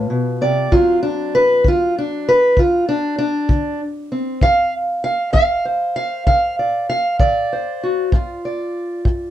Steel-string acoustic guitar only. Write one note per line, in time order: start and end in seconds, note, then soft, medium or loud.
0.00 0.69 F4 soft
0.00 0.41 B4 soft
0.10 0.40 B2 medium
0.41 0.71 C3 medium
0.41 0.72 D5 loud
0.72 1.27 D3 medium
0.72 4.39 F#3 soft
0.72 4.11 C4 soft
0.72 1.02 F4 loud
1.03 1.33 D4 medium
1.35 1.65 B4 loud
1.64 2.20 D3 medium
1.64 1.97 F4 loud
1.98 2.27 D4 medium
2.29 2.58 B4 loud
2.57 3.12 D3 medium
2.57 2.88 F4 medium
2.89 3.17 D4 medium
3.18 3.80 D4 medium
3.49 4.05 D3 medium
4.12 4.39 C4 soft
4.42 4.97 D3 medium
4.42 4.73 F5 loud
5.04 5.32 F5 medium
5.33 5.89 D3 medium
5.33 5.65 F5 loud
5.65 7.51 C5 medium
5.96 6.26 F5 loud
6.27 6.83 D3 medium
6.27 6.58 F5 loud
6.59 6.89 D5 soft
6.89 7.20 F5 medium
7.20 7.76 D3 medium
7.20 8.43 D5 loud
7.53 8.10 C5 soft
7.83 8.10 F#4 soft
8.13 8.68 G2 medium
8.13 9.30 F4 soft
8.45 9.30 D5 soft
9.05 9.30 G2 medium